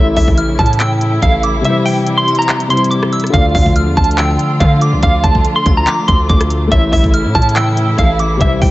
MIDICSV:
0, 0, Header, 1, 7, 480
1, 0, Start_track
1, 0, Key_signature, -1, "minor"
1, 0, Tempo, 422535
1, 1870, Time_signature, 4, 2, 24, 8
1, 9891, End_track
2, 0, Start_track
2, 0, Title_t, "Synth bell"
2, 0, Program_c, 0, 98
2, 429, Note_on_c, 0, 89, 87
2, 880, Note_off_c, 0, 89, 0
2, 912, Note_on_c, 0, 88, 92
2, 1587, Note_off_c, 0, 88, 0
2, 1629, Note_on_c, 0, 86, 74
2, 1857, Note_off_c, 0, 86, 0
2, 2589, Note_on_c, 0, 84, 86
2, 2817, Note_off_c, 0, 84, 0
2, 3551, Note_on_c, 0, 88, 84
2, 3778, Note_off_c, 0, 88, 0
2, 4270, Note_on_c, 0, 89, 83
2, 4721, Note_off_c, 0, 89, 0
2, 4752, Note_on_c, 0, 88, 94
2, 5427, Note_off_c, 0, 88, 0
2, 5472, Note_on_c, 0, 86, 79
2, 5699, Note_off_c, 0, 86, 0
2, 6435, Note_on_c, 0, 84, 81
2, 6660, Note_off_c, 0, 84, 0
2, 6675, Note_on_c, 0, 86, 81
2, 7124, Note_off_c, 0, 86, 0
2, 8109, Note_on_c, 0, 89, 83
2, 8560, Note_off_c, 0, 89, 0
2, 8593, Note_on_c, 0, 88, 92
2, 9268, Note_off_c, 0, 88, 0
2, 9312, Note_on_c, 0, 86, 74
2, 9539, Note_off_c, 0, 86, 0
2, 9891, End_track
3, 0, Start_track
3, 0, Title_t, "Clean electric guitar"
3, 0, Program_c, 1, 27
3, 0, Note_on_c, 1, 76, 105
3, 166, Note_off_c, 1, 76, 0
3, 190, Note_on_c, 1, 76, 88
3, 407, Note_off_c, 1, 76, 0
3, 669, Note_on_c, 1, 81, 80
3, 887, Note_off_c, 1, 81, 0
3, 911, Note_on_c, 1, 79, 96
3, 1362, Note_off_c, 1, 79, 0
3, 1393, Note_on_c, 1, 77, 90
3, 1609, Note_off_c, 1, 77, 0
3, 1877, Note_on_c, 1, 76, 106
3, 2091, Note_off_c, 1, 76, 0
3, 2109, Note_on_c, 1, 79, 75
3, 2454, Note_off_c, 1, 79, 0
3, 2472, Note_on_c, 1, 84, 82
3, 2691, Note_off_c, 1, 84, 0
3, 2711, Note_on_c, 1, 82, 76
3, 3045, Note_off_c, 1, 82, 0
3, 3070, Note_on_c, 1, 84, 81
3, 3287, Note_off_c, 1, 84, 0
3, 3302, Note_on_c, 1, 86, 74
3, 3756, Note_off_c, 1, 86, 0
3, 3789, Note_on_c, 1, 77, 110
3, 4006, Note_off_c, 1, 77, 0
3, 4030, Note_on_c, 1, 77, 85
3, 4247, Note_off_c, 1, 77, 0
3, 4511, Note_on_c, 1, 81, 77
3, 4728, Note_off_c, 1, 81, 0
3, 4751, Note_on_c, 1, 79, 89
3, 5202, Note_off_c, 1, 79, 0
3, 5228, Note_on_c, 1, 77, 83
3, 5446, Note_off_c, 1, 77, 0
3, 5716, Note_on_c, 1, 77, 113
3, 5930, Note_off_c, 1, 77, 0
3, 5948, Note_on_c, 1, 81, 76
3, 6294, Note_off_c, 1, 81, 0
3, 6314, Note_on_c, 1, 84, 89
3, 6533, Note_off_c, 1, 84, 0
3, 6558, Note_on_c, 1, 82, 78
3, 6889, Note_off_c, 1, 82, 0
3, 6906, Note_on_c, 1, 84, 76
3, 7125, Note_off_c, 1, 84, 0
3, 7151, Note_on_c, 1, 86, 80
3, 7601, Note_off_c, 1, 86, 0
3, 7629, Note_on_c, 1, 76, 106
3, 7846, Note_off_c, 1, 76, 0
3, 7871, Note_on_c, 1, 76, 91
3, 8088, Note_off_c, 1, 76, 0
3, 8349, Note_on_c, 1, 81, 79
3, 8567, Note_off_c, 1, 81, 0
3, 8593, Note_on_c, 1, 79, 92
3, 9042, Note_off_c, 1, 79, 0
3, 9073, Note_on_c, 1, 77, 87
3, 9289, Note_off_c, 1, 77, 0
3, 9557, Note_on_c, 1, 76, 104
3, 9771, Note_off_c, 1, 76, 0
3, 9789, Note_on_c, 1, 79, 75
3, 9891, Note_off_c, 1, 79, 0
3, 9891, End_track
4, 0, Start_track
4, 0, Title_t, "Felt piano"
4, 0, Program_c, 2, 0
4, 0, Note_on_c, 2, 57, 74
4, 0, Note_on_c, 2, 64, 77
4, 0, Note_on_c, 2, 69, 64
4, 0, Note_on_c, 2, 73, 62
4, 180, Control_c, 2, 64, 127
4, 1805, Note_off_c, 2, 57, 0
4, 1820, Note_off_c, 2, 69, 0
4, 1826, Note_on_c, 2, 48, 68
4, 1835, Note_off_c, 2, 73, 0
4, 1850, Note_off_c, 2, 64, 0
4, 1855, Note_on_c, 2, 55, 65
4, 1885, Control_c, 2, 64, 0
4, 1885, Note_on_c, 2, 64, 63
4, 1914, Note_on_c, 2, 72, 73
4, 2078, Control_c, 2, 64, 127
4, 3023, Note_off_c, 2, 48, 0
4, 3038, Note_off_c, 2, 55, 0
4, 3042, Note_on_c, 2, 48, 52
4, 3053, Note_off_c, 2, 64, 0
4, 3057, Note_on_c, 2, 55, 49
4, 3068, Note_off_c, 2, 72, 0
4, 3072, Note_on_c, 2, 64, 45
4, 3087, Note_on_c, 2, 72, 54
4, 3748, Note_on_c, 2, 50, 79
4, 3776, Note_off_c, 2, 48, 0
4, 3778, Note_on_c, 2, 57, 64
4, 3783, Note_off_c, 2, 55, 0
4, 3791, Note_off_c, 2, 64, 0
4, 3798, Note_off_c, 2, 72, 0
4, 3804, Control_c, 2, 64, 0
4, 3807, Note_on_c, 2, 65, 64
4, 3837, Note_on_c, 2, 74, 74
4, 3977, Control_c, 2, 64, 127
4, 7563, Note_off_c, 2, 50, 0
4, 7563, Note_off_c, 2, 57, 0
4, 7580, Note_on_c, 2, 57, 71
4, 7593, Note_off_c, 2, 65, 0
4, 7608, Note_off_c, 2, 74, 0
4, 7609, Note_on_c, 2, 69, 63
4, 7639, Note_on_c, 2, 73, 62
4, 7645, Control_c, 2, 64, 0
4, 7668, Note_on_c, 2, 64, 74
4, 7858, Control_c, 2, 64, 127
4, 9486, Note_off_c, 2, 57, 0
4, 9501, Note_off_c, 2, 69, 0
4, 9505, Note_on_c, 2, 48, 70
4, 9516, Note_off_c, 2, 73, 0
4, 9531, Note_off_c, 2, 64, 0
4, 9535, Note_on_c, 2, 55, 68
4, 9564, Control_c, 2, 64, 0
4, 9564, Note_on_c, 2, 64, 62
4, 9594, Note_on_c, 2, 72, 75
4, 9781, Control_c, 2, 64, 127
4, 9891, Note_off_c, 2, 48, 0
4, 9891, Note_off_c, 2, 55, 0
4, 9891, Note_off_c, 2, 64, 0
4, 9891, Note_off_c, 2, 72, 0
4, 9891, End_track
5, 0, Start_track
5, 0, Title_t, "String section"
5, 0, Program_c, 3, 48
5, 0, Note_on_c, 3, 49, 79
5, 0, Note_on_c, 3, 52, 75
5, 0, Note_on_c, 3, 57, 74
5, 0, Note_on_c, 3, 64, 89
5, 1824, Note_off_c, 3, 57, 0
5, 1850, Note_off_c, 3, 49, 0
5, 1867, Note_on_c, 3, 55, 75
5, 1868, Note_on_c, 3, 48, 80
5, 3751, Note_off_c, 3, 52, 0
5, 3751, Note_off_c, 3, 64, 0
5, 3769, Note_off_c, 3, 55, 0
5, 3770, Note_off_c, 3, 48, 0
5, 3790, Note_on_c, 3, 50, 79
5, 3790, Note_on_c, 3, 57, 74
5, 3790, Note_on_c, 3, 65, 85
5, 3791, Note_on_c, 3, 53, 74
5, 7591, Note_off_c, 3, 65, 0
5, 7592, Note_off_c, 3, 50, 0
5, 7592, Note_off_c, 3, 53, 0
5, 7628, Note_on_c, 3, 49, 80
5, 7628, Note_on_c, 3, 52, 77
5, 7629, Note_on_c, 3, 64, 90
5, 9504, Note_off_c, 3, 57, 0
5, 9530, Note_off_c, 3, 49, 0
5, 9549, Note_on_c, 3, 48, 80
5, 9550, Note_on_c, 3, 55, 76
5, 9891, Note_off_c, 3, 48, 0
5, 9891, Note_off_c, 3, 52, 0
5, 9891, Note_off_c, 3, 55, 0
5, 9891, Note_off_c, 3, 64, 0
5, 9891, End_track
6, 0, Start_track
6, 0, Title_t, "808-style bass"
6, 0, Program_c, 4, 38
6, 0, Note_on_c, 4, 33, 110
6, 179, Note_off_c, 4, 33, 0
6, 188, Note_on_c, 4, 33, 106
6, 311, Note_off_c, 4, 33, 0
6, 316, Note_on_c, 4, 33, 108
6, 557, Note_on_c, 4, 34, 99
6, 574, Note_off_c, 4, 33, 0
6, 661, Note_off_c, 4, 34, 0
6, 668, Note_on_c, 4, 45, 111
6, 1360, Note_off_c, 4, 45, 0
6, 1390, Note_on_c, 4, 33, 111
6, 1850, Note_off_c, 4, 33, 0
6, 3790, Note_on_c, 4, 38, 115
6, 4020, Note_off_c, 4, 38, 0
6, 4030, Note_on_c, 4, 38, 109
6, 4397, Note_on_c, 4, 40, 103
6, 4414, Note_off_c, 4, 38, 0
6, 4504, Note_off_c, 4, 40, 0
6, 4509, Note_on_c, 4, 38, 106
6, 4970, Note_off_c, 4, 38, 0
6, 5230, Note_on_c, 4, 50, 109
6, 5596, Note_on_c, 4, 36, 101
6, 5613, Note_off_c, 4, 50, 0
6, 5704, Note_off_c, 4, 36, 0
6, 5710, Note_on_c, 4, 38, 114
6, 5940, Note_off_c, 4, 38, 0
6, 5949, Note_on_c, 4, 38, 103
6, 6180, Note_off_c, 4, 38, 0
6, 6429, Note_on_c, 4, 38, 110
6, 6659, Note_off_c, 4, 38, 0
6, 6910, Note_on_c, 4, 38, 102
6, 7140, Note_off_c, 4, 38, 0
6, 7150, Note_on_c, 4, 38, 114
6, 7611, Note_off_c, 4, 38, 0
6, 7630, Note_on_c, 4, 33, 113
6, 7860, Note_off_c, 4, 33, 0
6, 7869, Note_on_c, 4, 33, 107
6, 8236, Note_on_c, 4, 45, 102
6, 8253, Note_off_c, 4, 33, 0
6, 8343, Note_off_c, 4, 45, 0
6, 8349, Note_on_c, 4, 45, 104
6, 9040, Note_off_c, 4, 45, 0
6, 9070, Note_on_c, 4, 33, 109
6, 9530, Note_off_c, 4, 33, 0
6, 9549, Note_on_c, 4, 36, 114
6, 9779, Note_off_c, 4, 36, 0
6, 9788, Note_on_c, 4, 36, 109
6, 9891, Note_off_c, 4, 36, 0
6, 9891, End_track
7, 0, Start_track
7, 0, Title_t, "Drums"
7, 188, Note_on_c, 9, 36, 99
7, 188, Note_on_c, 9, 46, 71
7, 301, Note_off_c, 9, 46, 0
7, 302, Note_off_c, 9, 36, 0
7, 316, Note_on_c, 9, 36, 101
7, 427, Note_on_c, 9, 42, 79
7, 430, Note_off_c, 9, 36, 0
7, 540, Note_off_c, 9, 42, 0
7, 668, Note_on_c, 9, 36, 92
7, 669, Note_on_c, 9, 42, 46
7, 749, Note_off_c, 9, 42, 0
7, 749, Note_on_c, 9, 42, 58
7, 782, Note_off_c, 9, 36, 0
7, 829, Note_off_c, 9, 42, 0
7, 829, Note_on_c, 9, 42, 73
7, 909, Note_off_c, 9, 42, 0
7, 909, Note_on_c, 9, 39, 122
7, 909, Note_on_c, 9, 42, 81
7, 1023, Note_off_c, 9, 39, 0
7, 1023, Note_off_c, 9, 42, 0
7, 1149, Note_on_c, 9, 42, 84
7, 1263, Note_off_c, 9, 42, 0
7, 1390, Note_on_c, 9, 36, 104
7, 1390, Note_on_c, 9, 42, 76
7, 1503, Note_off_c, 9, 36, 0
7, 1504, Note_off_c, 9, 42, 0
7, 1627, Note_on_c, 9, 42, 76
7, 1741, Note_off_c, 9, 42, 0
7, 1869, Note_on_c, 9, 42, 82
7, 1982, Note_off_c, 9, 42, 0
7, 2109, Note_on_c, 9, 46, 70
7, 2222, Note_off_c, 9, 46, 0
7, 2347, Note_on_c, 9, 42, 77
7, 2460, Note_off_c, 9, 42, 0
7, 2589, Note_on_c, 9, 42, 44
7, 2669, Note_off_c, 9, 42, 0
7, 2669, Note_on_c, 9, 42, 61
7, 2750, Note_off_c, 9, 42, 0
7, 2750, Note_on_c, 9, 42, 72
7, 2829, Note_off_c, 9, 42, 0
7, 2829, Note_on_c, 9, 39, 117
7, 2829, Note_on_c, 9, 42, 49
7, 2943, Note_off_c, 9, 39, 0
7, 2943, Note_off_c, 9, 42, 0
7, 2956, Note_on_c, 9, 42, 83
7, 3069, Note_off_c, 9, 42, 0
7, 3069, Note_on_c, 9, 42, 70
7, 3150, Note_off_c, 9, 42, 0
7, 3150, Note_on_c, 9, 42, 69
7, 3230, Note_off_c, 9, 42, 0
7, 3230, Note_on_c, 9, 42, 71
7, 3311, Note_off_c, 9, 42, 0
7, 3311, Note_on_c, 9, 42, 75
7, 3424, Note_off_c, 9, 42, 0
7, 3438, Note_on_c, 9, 37, 105
7, 3550, Note_on_c, 9, 42, 48
7, 3551, Note_off_c, 9, 37, 0
7, 3631, Note_off_c, 9, 42, 0
7, 3631, Note_on_c, 9, 42, 63
7, 3678, Note_on_c, 9, 37, 75
7, 3710, Note_off_c, 9, 42, 0
7, 3710, Note_on_c, 9, 42, 84
7, 3790, Note_off_c, 9, 42, 0
7, 3790, Note_on_c, 9, 36, 119
7, 3790, Note_on_c, 9, 42, 82
7, 3792, Note_off_c, 9, 37, 0
7, 3904, Note_off_c, 9, 36, 0
7, 3904, Note_off_c, 9, 42, 0
7, 4030, Note_on_c, 9, 36, 97
7, 4030, Note_on_c, 9, 46, 69
7, 4143, Note_off_c, 9, 36, 0
7, 4143, Note_off_c, 9, 46, 0
7, 4158, Note_on_c, 9, 36, 100
7, 4268, Note_on_c, 9, 42, 77
7, 4271, Note_off_c, 9, 36, 0
7, 4382, Note_off_c, 9, 42, 0
7, 4509, Note_on_c, 9, 36, 88
7, 4511, Note_on_c, 9, 42, 43
7, 4591, Note_off_c, 9, 42, 0
7, 4591, Note_on_c, 9, 42, 58
7, 4623, Note_off_c, 9, 36, 0
7, 4670, Note_off_c, 9, 42, 0
7, 4670, Note_on_c, 9, 42, 72
7, 4750, Note_off_c, 9, 42, 0
7, 4750, Note_on_c, 9, 39, 118
7, 4750, Note_on_c, 9, 42, 77
7, 4864, Note_off_c, 9, 39, 0
7, 4864, Note_off_c, 9, 42, 0
7, 4990, Note_on_c, 9, 42, 83
7, 5103, Note_off_c, 9, 42, 0
7, 5230, Note_on_c, 9, 42, 76
7, 5231, Note_on_c, 9, 36, 107
7, 5344, Note_off_c, 9, 36, 0
7, 5344, Note_off_c, 9, 42, 0
7, 5468, Note_on_c, 9, 42, 77
7, 5582, Note_off_c, 9, 42, 0
7, 5710, Note_on_c, 9, 36, 119
7, 5710, Note_on_c, 9, 42, 81
7, 5823, Note_off_c, 9, 36, 0
7, 5823, Note_off_c, 9, 42, 0
7, 5949, Note_on_c, 9, 36, 96
7, 5949, Note_on_c, 9, 42, 70
7, 6062, Note_off_c, 9, 42, 0
7, 6063, Note_off_c, 9, 36, 0
7, 6077, Note_on_c, 9, 36, 101
7, 6187, Note_on_c, 9, 42, 78
7, 6191, Note_off_c, 9, 36, 0
7, 6300, Note_off_c, 9, 42, 0
7, 6428, Note_on_c, 9, 42, 71
7, 6429, Note_on_c, 9, 36, 92
7, 6541, Note_off_c, 9, 42, 0
7, 6543, Note_off_c, 9, 36, 0
7, 6670, Note_on_c, 9, 39, 113
7, 6670, Note_on_c, 9, 42, 76
7, 6783, Note_off_c, 9, 39, 0
7, 6783, Note_off_c, 9, 42, 0
7, 6909, Note_on_c, 9, 42, 84
7, 6910, Note_on_c, 9, 36, 100
7, 7023, Note_off_c, 9, 42, 0
7, 7024, Note_off_c, 9, 36, 0
7, 7150, Note_on_c, 9, 36, 102
7, 7150, Note_on_c, 9, 42, 47
7, 7264, Note_off_c, 9, 36, 0
7, 7264, Note_off_c, 9, 42, 0
7, 7277, Note_on_c, 9, 37, 101
7, 7277, Note_on_c, 9, 42, 79
7, 7388, Note_off_c, 9, 42, 0
7, 7388, Note_on_c, 9, 42, 80
7, 7391, Note_off_c, 9, 37, 0
7, 7501, Note_off_c, 9, 42, 0
7, 7629, Note_on_c, 9, 36, 124
7, 7630, Note_on_c, 9, 42, 85
7, 7743, Note_off_c, 9, 36, 0
7, 7743, Note_off_c, 9, 42, 0
7, 7869, Note_on_c, 9, 36, 97
7, 7869, Note_on_c, 9, 46, 69
7, 7982, Note_off_c, 9, 36, 0
7, 7982, Note_off_c, 9, 46, 0
7, 7997, Note_on_c, 9, 36, 99
7, 8107, Note_on_c, 9, 42, 76
7, 8111, Note_off_c, 9, 36, 0
7, 8221, Note_off_c, 9, 42, 0
7, 8349, Note_on_c, 9, 36, 91
7, 8349, Note_on_c, 9, 42, 45
7, 8429, Note_off_c, 9, 42, 0
7, 8429, Note_on_c, 9, 42, 59
7, 8462, Note_off_c, 9, 36, 0
7, 8509, Note_off_c, 9, 42, 0
7, 8509, Note_on_c, 9, 42, 74
7, 8589, Note_off_c, 9, 42, 0
7, 8589, Note_on_c, 9, 39, 120
7, 8589, Note_on_c, 9, 42, 78
7, 8703, Note_off_c, 9, 39, 0
7, 8703, Note_off_c, 9, 42, 0
7, 8828, Note_on_c, 9, 42, 83
7, 8942, Note_off_c, 9, 42, 0
7, 9070, Note_on_c, 9, 36, 100
7, 9070, Note_on_c, 9, 42, 74
7, 9183, Note_off_c, 9, 36, 0
7, 9184, Note_off_c, 9, 42, 0
7, 9307, Note_on_c, 9, 42, 79
7, 9421, Note_off_c, 9, 42, 0
7, 9549, Note_on_c, 9, 36, 118
7, 9549, Note_on_c, 9, 42, 83
7, 9662, Note_off_c, 9, 42, 0
7, 9663, Note_off_c, 9, 36, 0
7, 9788, Note_on_c, 9, 36, 97
7, 9788, Note_on_c, 9, 46, 73
7, 9891, Note_off_c, 9, 36, 0
7, 9891, Note_off_c, 9, 46, 0
7, 9891, End_track
0, 0, End_of_file